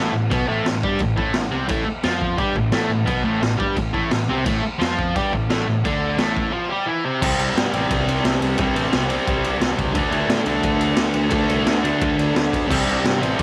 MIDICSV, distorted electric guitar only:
0, 0, Header, 1, 3, 480
1, 0, Start_track
1, 0, Key_signature, 0, "minor"
1, 0, Tempo, 345622
1, 437, Time_signature, 4, 2, 24, 8
1, 9077, Tempo, 342661
1, 18730, End_track
2, 0, Start_track
2, 0, Title_t, "Distorted electric guitar"
2, 0, Program_c, 0, 30
2, 0, Note_on_c, 0, 45, 93
2, 0, Note_on_c, 0, 57, 94
2, 143, Note_off_c, 0, 45, 0
2, 160, Note_on_c, 0, 45, 65
2, 180, Note_off_c, 0, 57, 0
2, 371, Note_off_c, 0, 45, 0
2, 411, Note_on_c, 0, 47, 96
2, 434, Note_on_c, 0, 59, 93
2, 651, Note_off_c, 0, 47, 0
2, 656, Note_on_c, 0, 45, 75
2, 667, Note_off_c, 0, 59, 0
2, 673, Note_on_c, 0, 57, 100
2, 900, Note_off_c, 0, 45, 0
2, 908, Note_off_c, 0, 57, 0
2, 914, Note_on_c, 0, 45, 70
2, 1108, Note_off_c, 0, 45, 0
2, 1153, Note_on_c, 0, 55, 94
2, 1159, Note_on_c, 0, 67, 97
2, 1389, Note_off_c, 0, 55, 0
2, 1392, Note_off_c, 0, 67, 0
2, 1392, Note_on_c, 0, 45, 60
2, 1587, Note_off_c, 0, 45, 0
2, 1613, Note_on_c, 0, 45, 97
2, 1637, Note_on_c, 0, 57, 93
2, 1841, Note_off_c, 0, 45, 0
2, 1858, Note_on_c, 0, 45, 73
2, 1871, Note_off_c, 0, 57, 0
2, 2060, Note_off_c, 0, 45, 0
2, 2093, Note_on_c, 0, 48, 82
2, 2098, Note_on_c, 0, 60, 90
2, 2325, Note_off_c, 0, 48, 0
2, 2330, Note_on_c, 0, 45, 97
2, 2335, Note_off_c, 0, 60, 0
2, 2340, Note_on_c, 0, 57, 103
2, 2557, Note_off_c, 0, 45, 0
2, 2582, Note_off_c, 0, 57, 0
2, 2825, Note_on_c, 0, 53, 93
2, 2828, Note_on_c, 0, 65, 96
2, 3292, Note_on_c, 0, 55, 83
2, 3304, Note_on_c, 0, 67, 100
2, 3305, Note_off_c, 0, 53, 0
2, 3307, Note_off_c, 0, 65, 0
2, 3539, Note_off_c, 0, 55, 0
2, 3544, Note_off_c, 0, 67, 0
2, 3546, Note_on_c, 0, 45, 72
2, 3745, Note_off_c, 0, 45, 0
2, 3780, Note_on_c, 0, 45, 78
2, 3790, Note_on_c, 0, 57, 95
2, 3985, Note_off_c, 0, 45, 0
2, 4002, Note_on_c, 0, 45, 69
2, 4028, Note_off_c, 0, 57, 0
2, 4213, Note_off_c, 0, 45, 0
2, 4238, Note_on_c, 0, 47, 91
2, 4251, Note_on_c, 0, 59, 93
2, 4492, Note_off_c, 0, 47, 0
2, 4498, Note_off_c, 0, 59, 0
2, 4498, Note_on_c, 0, 45, 92
2, 4505, Note_on_c, 0, 57, 98
2, 4721, Note_off_c, 0, 45, 0
2, 4737, Note_on_c, 0, 45, 78
2, 4745, Note_off_c, 0, 57, 0
2, 4941, Note_off_c, 0, 45, 0
2, 4964, Note_on_c, 0, 55, 82
2, 4990, Note_on_c, 0, 67, 104
2, 5215, Note_off_c, 0, 55, 0
2, 5223, Note_on_c, 0, 45, 67
2, 5228, Note_off_c, 0, 67, 0
2, 5424, Note_off_c, 0, 45, 0
2, 5459, Note_on_c, 0, 45, 95
2, 5464, Note_on_c, 0, 57, 114
2, 5695, Note_off_c, 0, 45, 0
2, 5705, Note_off_c, 0, 57, 0
2, 5711, Note_on_c, 0, 45, 75
2, 5908, Note_off_c, 0, 45, 0
2, 5953, Note_on_c, 0, 48, 77
2, 5965, Note_on_c, 0, 60, 82
2, 6176, Note_off_c, 0, 48, 0
2, 6182, Note_on_c, 0, 45, 95
2, 6194, Note_off_c, 0, 60, 0
2, 6199, Note_on_c, 0, 57, 106
2, 6416, Note_off_c, 0, 45, 0
2, 6433, Note_off_c, 0, 57, 0
2, 6643, Note_on_c, 0, 53, 83
2, 6658, Note_on_c, 0, 65, 107
2, 7134, Note_off_c, 0, 53, 0
2, 7141, Note_off_c, 0, 65, 0
2, 7159, Note_on_c, 0, 55, 94
2, 7168, Note_on_c, 0, 67, 100
2, 7392, Note_off_c, 0, 55, 0
2, 7395, Note_on_c, 0, 45, 78
2, 7396, Note_off_c, 0, 67, 0
2, 7589, Note_off_c, 0, 45, 0
2, 7633, Note_on_c, 0, 45, 87
2, 7636, Note_on_c, 0, 57, 91
2, 7855, Note_off_c, 0, 45, 0
2, 7870, Note_off_c, 0, 57, 0
2, 7872, Note_on_c, 0, 45, 67
2, 8067, Note_off_c, 0, 45, 0
2, 8113, Note_on_c, 0, 50, 92
2, 8128, Note_on_c, 0, 62, 104
2, 8587, Note_off_c, 0, 50, 0
2, 8594, Note_on_c, 0, 45, 89
2, 8595, Note_off_c, 0, 62, 0
2, 8605, Note_on_c, 0, 57, 112
2, 9056, Note_off_c, 0, 45, 0
2, 9061, Note_on_c, 0, 53, 90
2, 9064, Note_off_c, 0, 57, 0
2, 9069, Note_on_c, 0, 65, 109
2, 9290, Note_on_c, 0, 55, 106
2, 9302, Note_off_c, 0, 53, 0
2, 9306, Note_off_c, 0, 65, 0
2, 9313, Note_on_c, 0, 67, 109
2, 9533, Note_on_c, 0, 52, 90
2, 9537, Note_off_c, 0, 55, 0
2, 9545, Note_on_c, 0, 64, 110
2, 9548, Note_off_c, 0, 67, 0
2, 9778, Note_off_c, 0, 52, 0
2, 9785, Note_off_c, 0, 64, 0
2, 9792, Note_on_c, 0, 48, 84
2, 9800, Note_on_c, 0, 60, 80
2, 10017, Note_off_c, 0, 48, 0
2, 10032, Note_off_c, 0, 60, 0
2, 10034, Note_on_c, 0, 48, 91
2, 10062, Note_on_c, 0, 55, 99
2, 10085, Note_on_c, 0, 60, 105
2, 10727, Note_off_c, 0, 60, 0
2, 10733, Note_on_c, 0, 60, 92
2, 10752, Note_off_c, 0, 55, 0
2, 10758, Note_on_c, 0, 55, 79
2, 10786, Note_off_c, 0, 48, 0
2, 10792, Note_on_c, 0, 48, 82
2, 11924, Note_off_c, 0, 48, 0
2, 11930, Note_off_c, 0, 60, 0
2, 11941, Note_on_c, 0, 48, 97
2, 11943, Note_off_c, 0, 55, 0
2, 11982, Note_on_c, 0, 55, 101
2, 12005, Note_on_c, 0, 60, 103
2, 12629, Note_off_c, 0, 60, 0
2, 12646, Note_on_c, 0, 60, 95
2, 12653, Note_off_c, 0, 48, 0
2, 12662, Note_off_c, 0, 55, 0
2, 12679, Note_on_c, 0, 55, 78
2, 12708, Note_on_c, 0, 48, 66
2, 13831, Note_off_c, 0, 48, 0
2, 13837, Note_on_c, 0, 50, 86
2, 13843, Note_off_c, 0, 60, 0
2, 13860, Note_off_c, 0, 55, 0
2, 13870, Note_on_c, 0, 57, 105
2, 13905, Note_on_c, 0, 62, 108
2, 14548, Note_off_c, 0, 62, 0
2, 14553, Note_on_c, 0, 62, 81
2, 14583, Note_off_c, 0, 57, 0
2, 14589, Note_on_c, 0, 57, 75
2, 14617, Note_off_c, 0, 50, 0
2, 14623, Note_on_c, 0, 50, 74
2, 15734, Note_off_c, 0, 50, 0
2, 15751, Note_on_c, 0, 50, 91
2, 15756, Note_off_c, 0, 62, 0
2, 15769, Note_off_c, 0, 57, 0
2, 15786, Note_on_c, 0, 57, 93
2, 15814, Note_on_c, 0, 62, 89
2, 16464, Note_off_c, 0, 62, 0
2, 16476, Note_off_c, 0, 50, 0
2, 16481, Note_on_c, 0, 62, 77
2, 16493, Note_off_c, 0, 57, 0
2, 16515, Note_on_c, 0, 57, 72
2, 16533, Note_on_c, 0, 50, 79
2, 17668, Note_off_c, 0, 50, 0
2, 17673, Note_on_c, 0, 48, 96
2, 17682, Note_off_c, 0, 62, 0
2, 17699, Note_off_c, 0, 57, 0
2, 17718, Note_on_c, 0, 55, 94
2, 17741, Note_on_c, 0, 60, 116
2, 18391, Note_off_c, 0, 60, 0
2, 18397, Note_on_c, 0, 60, 94
2, 18422, Note_off_c, 0, 55, 0
2, 18427, Note_on_c, 0, 55, 78
2, 18456, Note_off_c, 0, 48, 0
2, 18461, Note_on_c, 0, 48, 75
2, 18730, Note_off_c, 0, 48, 0
2, 18730, Note_off_c, 0, 55, 0
2, 18730, Note_off_c, 0, 60, 0
2, 18730, End_track
3, 0, Start_track
3, 0, Title_t, "Muted distorted electric guitar strokes"
3, 2574, Note_on_c, 9, 29, 54
3, 2713, Note_off_c, 9, 29, 0
3, 6432, Note_on_c, 9, 29, 57
3, 6571, Note_off_c, 9, 29, 0
3, 18730, End_track
0, 0, End_of_file